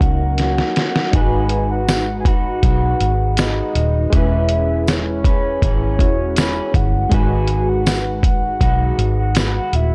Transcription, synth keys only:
0, 0, Header, 1, 2, 480
1, 0, Start_track
1, 0, Key_signature, 5, "minor"
1, 0, Tempo, 747198
1, 732, Time_signature, 4, 2, 24, 8
1, 6391, End_track
2, 0, Start_track
2, 0, Title_t, "Synth keys"
2, 0, Program_c, 0, 88
2, 0, Control_c, 0, 64, 127
2, 0, Note_on_c, 0, 54, 63
2, 0, Note_on_c, 0, 61, 54
2, 0, Note_on_c, 0, 63, 53
2, 0, Note_on_c, 0, 70, 68
2, 702, Note_off_c, 0, 54, 0
2, 707, Note_off_c, 0, 61, 0
2, 712, Note_off_c, 0, 63, 0
2, 716, Note_on_c, 0, 56, 63
2, 719, Note_off_c, 0, 70, 0
2, 726, Note_on_c, 0, 63, 57
2, 737, Note_on_c, 0, 66, 61
2, 740, Control_c, 0, 64, 0
2, 748, Note_on_c, 0, 71, 75
2, 844, Control_c, 0, 64, 127
2, 2618, Note_off_c, 0, 56, 0
2, 2623, Note_off_c, 0, 63, 0
2, 2629, Note_off_c, 0, 66, 0
2, 2633, Note_on_c, 0, 56, 70
2, 2634, Note_off_c, 0, 71, 0
2, 2645, Note_on_c, 0, 61, 58
2, 2655, Note_on_c, 0, 64, 61
2, 2661, Control_c, 0, 64, 0
2, 2666, Note_on_c, 0, 71, 73
2, 2755, Control_c, 0, 64, 127
2, 3818, Note_off_c, 0, 56, 0
2, 3824, Note_off_c, 0, 61, 0
2, 3829, Note_off_c, 0, 64, 0
2, 3835, Note_off_c, 0, 71, 0
2, 3843, Note_on_c, 0, 56, 45
2, 3850, Note_on_c, 0, 61, 42
2, 3856, Note_on_c, 0, 64, 43
2, 3859, Note_on_c, 0, 66, 45
2, 4549, Note_off_c, 0, 56, 0
2, 4556, Note_on_c, 0, 56, 70
2, 4565, Note_on_c, 0, 51, 64
2, 4570, Note_off_c, 0, 61, 0
2, 4570, Note_off_c, 0, 66, 0
2, 4573, Note_off_c, 0, 64, 0
2, 4578, Note_on_c, 0, 66, 64
2, 4580, Control_c, 0, 64, 0
2, 4587, Note_on_c, 0, 71, 74
2, 4691, Control_c, 0, 64, 127
2, 6391, Note_off_c, 0, 51, 0
2, 6391, Note_off_c, 0, 56, 0
2, 6391, Note_off_c, 0, 66, 0
2, 6391, Note_off_c, 0, 71, 0
2, 6391, End_track
0, 0, End_of_file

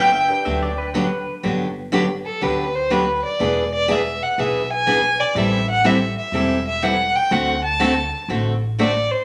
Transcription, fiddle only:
0, 0, Header, 1, 2, 480
1, 0, Start_track
1, 0, Key_signature, 1, "major"
1, 0, Tempo, 490196
1, 1408, Time_signature, 4, 2, 24, 8
1, 9052, End_track
2, 0, Start_track
2, 0, Title_t, "Fiddle"
2, 0, Program_c, 0, 110
2, 0, Note_on_c, 0, 79, 113
2, 932, Note_off_c, 0, 79, 0
2, 2209, Note_on_c, 0, 69, 80
2, 2378, Note_on_c, 0, 71, 76
2, 2393, Note_off_c, 0, 69, 0
2, 2689, Note_on_c, 0, 72, 89
2, 2704, Note_off_c, 0, 71, 0
2, 2853, Note_on_c, 0, 71, 77
2, 2868, Note_off_c, 0, 72, 0
2, 3171, Note_off_c, 0, 71, 0
2, 3175, Note_on_c, 0, 74, 74
2, 3653, Note_off_c, 0, 74, 0
2, 3659, Note_on_c, 0, 74, 91
2, 3825, Note_on_c, 0, 76, 78
2, 3840, Note_off_c, 0, 74, 0
2, 4139, Note_on_c, 0, 78, 84
2, 4154, Note_off_c, 0, 76, 0
2, 4308, Note_on_c, 0, 76, 80
2, 4322, Note_off_c, 0, 78, 0
2, 4618, Note_off_c, 0, 76, 0
2, 4622, Note_on_c, 0, 80, 106
2, 5089, Note_on_c, 0, 74, 83
2, 5104, Note_off_c, 0, 80, 0
2, 5267, Note_on_c, 0, 76, 79
2, 5281, Note_off_c, 0, 74, 0
2, 5574, Note_off_c, 0, 76, 0
2, 5580, Note_on_c, 0, 78, 100
2, 5737, Note_on_c, 0, 76, 81
2, 5752, Note_off_c, 0, 78, 0
2, 6041, Note_off_c, 0, 76, 0
2, 6046, Note_on_c, 0, 76, 77
2, 6527, Note_off_c, 0, 76, 0
2, 6533, Note_on_c, 0, 76, 84
2, 6695, Note_on_c, 0, 78, 85
2, 6710, Note_off_c, 0, 76, 0
2, 7003, Note_on_c, 0, 79, 98
2, 7018, Note_off_c, 0, 78, 0
2, 7168, Note_on_c, 0, 78, 83
2, 7182, Note_off_c, 0, 79, 0
2, 7474, Note_off_c, 0, 78, 0
2, 7480, Note_on_c, 0, 81, 90
2, 8085, Note_off_c, 0, 81, 0
2, 8616, Note_on_c, 0, 74, 83
2, 8920, Note_on_c, 0, 72, 76
2, 8935, Note_off_c, 0, 74, 0
2, 9052, Note_off_c, 0, 72, 0
2, 9052, End_track
0, 0, End_of_file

